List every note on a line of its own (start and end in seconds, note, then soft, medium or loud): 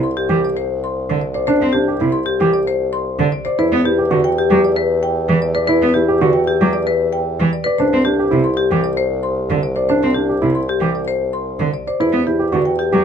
0.00 3.44 C2 medium
0.00 0.20 C6 soft
0.17 0.33 G4 medium
0.29 0.39 E3 medium
0.29 0.46 G4 medium
0.45 0.60 D5 soft
0.57 0.73 C5 medium
0.84 1.00 C6 medium
1.10 1.19 D3 medium
1.21 1.38 D5 soft
1.34 1.46 C5 medium
1.34 1.52 D5 soft
1.47 1.65 D4 medium
1.47 1.64 C5 medium
1.61 1.71 C4 medium
1.73 1.91 D4 medium
1.73 1.91 G4 medium
1.88 2.04 G4 medium
2.00 2.10 C3 soft
2.00 2.17 E4 medium
2.12 2.30 C6 medium
2.26 2.43 G4 medium
2.40 2.50 E3 medium
2.40 2.57 G4 medium
2.53 2.70 D5 medium
2.67 2.84 C5 medium
2.93 3.09 C6 medium
3.19 3.29 D3 medium
3.32 3.49 D5 medium
3.45 3.62 C5 medium
3.45 3.62 D5 medium
3.59 7.65 E2 medium
3.59 3.75 E4 medium
3.59 3.75 B4 medium
3.72 3.82 B3 medium
3.85 4.02 E4 medium
3.85 4.02 G4 medium
3.98 4.15 G4 medium
4.11 4.21 D3 medium
4.11 4.28 F#4 medium
4.24 4.41 G5 medium
4.38 4.55 G4 medium
4.50 4.60 F#3 medium
4.50 4.67 G4 medium
4.64 4.81 D5 medium
4.76 4.94 B4 medium
5.03 5.20 G5 medium
5.29 5.39 E3 medium
5.42 5.59 D5 medium
5.55 5.66 B4 medium
5.55 5.73 D5 medium
5.67 5.86 E4 medium
5.67 5.85 B4 medium
5.82 5.92 B3 medium
5.94 6.12 E4 medium
5.94 6.12 G4 medium
6.08 6.25 G4 medium
6.21 6.31 D3 medium
6.21 6.38 F#4 medium
6.33 6.51 G5 medium
6.47 6.65 G4 medium
6.61 6.71 F#3 medium
6.61 6.78 G4 medium
6.73 6.91 D5 medium
6.87 7.04 B4 medium
7.13 7.30 G5 medium
7.40 7.50 E3 medium
7.53 7.70 D5 medium
7.64 7.82 B4 medium
7.64 7.83 D5 medium
7.78 11.86 C2 medium
7.78 7.96 D4 medium
7.78 7.96 C5 medium
7.93 8.03 C4 medium
8.05 8.22 D4 medium
8.05 8.22 G4 medium
8.19 8.36 G4 medium
8.31 8.42 C3 soft
8.31 8.49 E4 medium
8.44 8.62 C6 medium
8.57 8.75 G4 medium
8.71 8.81 E3 medium
8.71 8.88 G4 medium
8.84 9.01 D5 medium
8.97 9.14 C5 medium
9.23 9.41 C6 medium
9.50 9.60 D3 medium
9.63 9.80 D5 medium
9.76 9.88 C5 medium
9.76 9.94 D5 soft
9.89 10.07 D4 medium
9.89 10.06 C5 medium
10.03 10.13 C4 medium
10.14 10.33 D4 soft
10.14 10.33 G4 medium
10.29 10.46 G4 medium
10.42 10.52 C3 soft
10.42 10.59 E4 medium
10.55 10.72 C6 soft
10.69 10.86 G4 medium
10.81 10.91 E3 medium
10.81 10.99 G4 medium
10.95 11.12 D5 medium
11.08 11.25 C5 medium
11.33 11.51 C6 medium
11.60 11.70 D3 medium
11.74 11.91 D5 soft
11.87 12.04 C5 medium
11.87 12.04 D5 soft
12.00 13.04 E2 medium
12.00 12.17 E4 medium
12.00 12.17 B4 medium
12.12 12.23 B3 soft
12.27 12.44 E4 soft
12.27 12.44 G4 medium
12.39 12.57 G4 medium
12.52 12.63 D3 soft
12.52 12.70 F#4 medium
12.65 12.83 G5 medium
12.79 12.96 G4 medium
12.92 13.03 F#3 medium
12.92 13.04 G4 medium